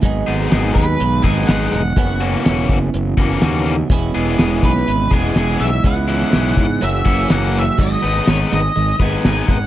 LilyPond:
<<
  \new Staff \with { instrumentName = "Lead electric guitar" } { \time 4/4 \key gis \minor \tempo 4 = 124 r4. b'4 gis''8 fis''8 fis''8~ | fis''8 r2. r8 | r4. b'4 gis''4 e''8 | fis''2 e''4 fis''8 e''8 |
dis''4 cis''8 dis''4 gis''4 fis''8 | }
  \new Staff \with { instrumentName = "Overdriven electric guitar" } { \time 4/4 \key gis \minor r8 <gis b dis' gis'>8 <gis b dis' gis'>8 r4 <gis b dis' gis'>8 <gis b dis' gis'>8 r8 | r8 <e ais cis' fis'>8 <e ais cis' fis'>8 r4 <e ais cis' fis'>8 <e ais cis' fis'>8 r8 | r8 <e gis b gis'>8 <e gis b gis'>8 r4 <e gis b gis'>8 <e gis b gis'>8 r8 | r8 <e gis cis' e'>8 <e gis cis' e'>8 r4 <e ais cis' fis'>8 <e ais cis' fis'>8 r8 |
r8 <gis b dis' b'>8 <gis b dis' b'>8 r4 <gis b dis' b'>8 <gis b dis' b'>8 r8 | }
  \new Staff \with { instrumentName = "Clean electric guitar" } { \clef bass \time 4/4 \key gis \minor <gis, dis fis b dis' gis'>1 | <fis, cis e b cis' fis'>1 | <e, b, e gis cis' e'>1 | <cis e gis b e'>2 <fis, cis e ais cis' fis'>2 |
<gis, dis fis>8 <gis, dis>8 <gis, dis>8 <gis, dis>8 <gis, dis>8 <gis, dis>8 <gis, dis>8 <gis, dis>8 | }
  \new Staff \with { instrumentName = "Fingered electric bass" } { \clef bass \time 4/4 \key gis \minor gis,,8 gis,,8 gis,,8 dis,8 b,,8 gis,,8 gis,,8 e,,8 | fis,,4 e,,8 fis,,8 fis,,8 fis,,8 dis,4 | e,,8 e,,8 e,,8 b,,8 gis,,8 e,,8 e,,8 b,,8 | cis,4 b,,8 gis,8 fis,,8 fis,,8 fis,,4 |
gis,,8 gis,,8 gis,,8 gis,,8 gis,,8 gis,,8 gis,,8 gis,,8 | }
  \new DrumStaff \with { instrumentName = "Drums" } \drummode { \time 4/4 <hh bd>8 hh8 <hh sn>8 <hh bd>8 hh8 <hh bd>8 <hh sn>8 hh8 | <hh bd>8 hh8 <hh sn>8 <hh bd>8 hh8 <hh bd>8 <hh sn>8 hh8 | <hh bd>8 hh8 <hh sn>8 <hh bd>16 sn16 hh8 <hh bd>8 <hh sn>8 hh8 | <hh bd>8 hh16 sn16 <hh sn>8 <hh bd>8 hh8 <hh bd>8 <hh sn>8 hh8 |
<cymc bd>4 <hho sn>4 hho8 bd8 <hho sn>8 bd8 | }
>>